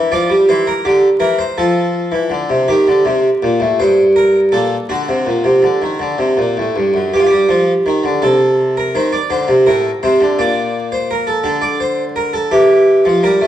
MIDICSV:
0, 0, Header, 1, 2, 480
1, 0, Start_track
1, 0, Tempo, 723764
1, 317, Time_signature, 6, 3, 24, 8
1, 1279, Tempo, 738916
1, 5599, Tempo, 715990
1, 8879, End_track
2, 0, Start_track
2, 0, Title_t, "Harpsichord"
2, 0, Program_c, 0, 6
2, 0, Note_on_c, 0, 52, 63
2, 0, Note_on_c, 0, 70, 80
2, 67, Note_off_c, 0, 70, 0
2, 77, Note_off_c, 0, 52, 0
2, 78, Note_on_c, 0, 53, 66
2, 79, Note_on_c, 0, 74, 79
2, 194, Note_off_c, 0, 53, 0
2, 198, Note_on_c, 0, 55, 62
2, 227, Note_off_c, 0, 74, 0
2, 314, Note_off_c, 0, 55, 0
2, 324, Note_on_c, 0, 72, 77
2, 328, Note_on_c, 0, 52, 68
2, 436, Note_off_c, 0, 72, 0
2, 445, Note_on_c, 0, 70, 72
2, 472, Note_off_c, 0, 52, 0
2, 556, Note_off_c, 0, 70, 0
2, 564, Note_on_c, 0, 67, 69
2, 565, Note_on_c, 0, 50, 65
2, 710, Note_off_c, 0, 67, 0
2, 711, Note_off_c, 0, 50, 0
2, 795, Note_on_c, 0, 52, 62
2, 797, Note_on_c, 0, 70, 68
2, 913, Note_off_c, 0, 70, 0
2, 919, Note_on_c, 0, 72, 69
2, 944, Note_off_c, 0, 52, 0
2, 1035, Note_off_c, 0, 72, 0
2, 1046, Note_on_c, 0, 69, 73
2, 1047, Note_on_c, 0, 53, 65
2, 1394, Note_off_c, 0, 53, 0
2, 1402, Note_on_c, 0, 52, 59
2, 1517, Note_off_c, 0, 52, 0
2, 1519, Note_on_c, 0, 50, 62
2, 1636, Note_off_c, 0, 50, 0
2, 1647, Note_on_c, 0, 48, 54
2, 1744, Note_off_c, 0, 69, 0
2, 1761, Note_off_c, 0, 48, 0
2, 1768, Note_on_c, 0, 67, 62
2, 1769, Note_on_c, 0, 51, 64
2, 1883, Note_off_c, 0, 51, 0
2, 1894, Note_on_c, 0, 50, 64
2, 2006, Note_off_c, 0, 50, 0
2, 2008, Note_on_c, 0, 48, 68
2, 2156, Note_off_c, 0, 48, 0
2, 2252, Note_on_c, 0, 46, 63
2, 2364, Note_off_c, 0, 46, 0
2, 2366, Note_on_c, 0, 45, 65
2, 2465, Note_off_c, 0, 67, 0
2, 2480, Note_off_c, 0, 45, 0
2, 2492, Note_on_c, 0, 43, 69
2, 2494, Note_on_c, 0, 72, 68
2, 2638, Note_off_c, 0, 72, 0
2, 2729, Note_on_c, 0, 70, 66
2, 2874, Note_off_c, 0, 70, 0
2, 2950, Note_off_c, 0, 43, 0
2, 2963, Note_on_c, 0, 69, 63
2, 2967, Note_on_c, 0, 46, 65
2, 3110, Note_off_c, 0, 69, 0
2, 3113, Note_off_c, 0, 46, 0
2, 3204, Note_on_c, 0, 50, 56
2, 3206, Note_on_c, 0, 66, 54
2, 3317, Note_off_c, 0, 50, 0
2, 3330, Note_on_c, 0, 48, 51
2, 3440, Note_off_c, 0, 48, 0
2, 3446, Note_on_c, 0, 46, 49
2, 3558, Note_off_c, 0, 46, 0
2, 3562, Note_on_c, 0, 48, 50
2, 3676, Note_off_c, 0, 48, 0
2, 3679, Note_on_c, 0, 50, 52
2, 3795, Note_off_c, 0, 50, 0
2, 3806, Note_on_c, 0, 51, 49
2, 3919, Note_off_c, 0, 51, 0
2, 3920, Note_on_c, 0, 50, 55
2, 4037, Note_off_c, 0, 50, 0
2, 4043, Note_on_c, 0, 48, 55
2, 4159, Note_off_c, 0, 48, 0
2, 4165, Note_on_c, 0, 46, 55
2, 4282, Note_off_c, 0, 46, 0
2, 4296, Note_on_c, 0, 45, 51
2, 4384, Note_off_c, 0, 66, 0
2, 4409, Note_off_c, 0, 45, 0
2, 4416, Note_on_c, 0, 43, 54
2, 4530, Note_off_c, 0, 43, 0
2, 4534, Note_on_c, 0, 42, 50
2, 4649, Note_off_c, 0, 42, 0
2, 4662, Note_on_c, 0, 67, 57
2, 4663, Note_on_c, 0, 43, 52
2, 4700, Note_on_c, 0, 65, 53
2, 4701, Note_off_c, 0, 67, 0
2, 4744, Note_off_c, 0, 65, 0
2, 4746, Note_on_c, 0, 67, 57
2, 4773, Note_off_c, 0, 43, 0
2, 4776, Note_on_c, 0, 55, 70
2, 4889, Note_off_c, 0, 55, 0
2, 4890, Note_on_c, 0, 53, 70
2, 5037, Note_off_c, 0, 53, 0
2, 5132, Note_on_c, 0, 51, 67
2, 5244, Note_off_c, 0, 51, 0
2, 5247, Note_on_c, 0, 50, 65
2, 5348, Note_off_c, 0, 67, 0
2, 5361, Note_off_c, 0, 50, 0
2, 5366, Note_on_c, 0, 69, 59
2, 5370, Note_on_c, 0, 48, 76
2, 5713, Note_off_c, 0, 69, 0
2, 5730, Note_on_c, 0, 70, 53
2, 5833, Note_off_c, 0, 48, 0
2, 5845, Note_off_c, 0, 70, 0
2, 5848, Note_on_c, 0, 51, 72
2, 5851, Note_on_c, 0, 72, 61
2, 5966, Note_off_c, 0, 72, 0
2, 5966, Note_on_c, 0, 74, 59
2, 5998, Note_off_c, 0, 51, 0
2, 6084, Note_off_c, 0, 74, 0
2, 6084, Note_on_c, 0, 50, 75
2, 6085, Note_on_c, 0, 72, 62
2, 6203, Note_off_c, 0, 50, 0
2, 6205, Note_on_c, 0, 48, 68
2, 6236, Note_off_c, 0, 72, 0
2, 6324, Note_off_c, 0, 48, 0
2, 6327, Note_on_c, 0, 70, 60
2, 6330, Note_on_c, 0, 45, 70
2, 6477, Note_off_c, 0, 70, 0
2, 6479, Note_off_c, 0, 45, 0
2, 6572, Note_on_c, 0, 48, 74
2, 6572, Note_on_c, 0, 72, 59
2, 6688, Note_off_c, 0, 48, 0
2, 6690, Note_on_c, 0, 50, 68
2, 6721, Note_off_c, 0, 72, 0
2, 6807, Note_off_c, 0, 50, 0
2, 6812, Note_on_c, 0, 46, 80
2, 6813, Note_on_c, 0, 74, 64
2, 7161, Note_off_c, 0, 74, 0
2, 7170, Note_on_c, 0, 72, 60
2, 7287, Note_off_c, 0, 72, 0
2, 7295, Note_on_c, 0, 70, 63
2, 7403, Note_on_c, 0, 69, 63
2, 7409, Note_off_c, 0, 70, 0
2, 7509, Note_off_c, 0, 46, 0
2, 7509, Note_off_c, 0, 69, 0
2, 7515, Note_on_c, 0, 50, 70
2, 7517, Note_on_c, 0, 69, 58
2, 7634, Note_on_c, 0, 74, 78
2, 7639, Note_off_c, 0, 69, 0
2, 7757, Note_off_c, 0, 74, 0
2, 7759, Note_on_c, 0, 72, 73
2, 7910, Note_off_c, 0, 72, 0
2, 8000, Note_on_c, 0, 70, 76
2, 8117, Note_on_c, 0, 69, 75
2, 8118, Note_off_c, 0, 70, 0
2, 8215, Note_off_c, 0, 50, 0
2, 8236, Note_off_c, 0, 69, 0
2, 8238, Note_on_c, 0, 67, 82
2, 8240, Note_on_c, 0, 52, 76
2, 8588, Note_off_c, 0, 52, 0
2, 8599, Note_on_c, 0, 53, 67
2, 8703, Note_off_c, 0, 67, 0
2, 8716, Note_off_c, 0, 53, 0
2, 8719, Note_on_c, 0, 55, 70
2, 8722, Note_on_c, 0, 70, 83
2, 8836, Note_off_c, 0, 55, 0
2, 8840, Note_on_c, 0, 57, 68
2, 8871, Note_off_c, 0, 70, 0
2, 8879, Note_off_c, 0, 57, 0
2, 8879, End_track
0, 0, End_of_file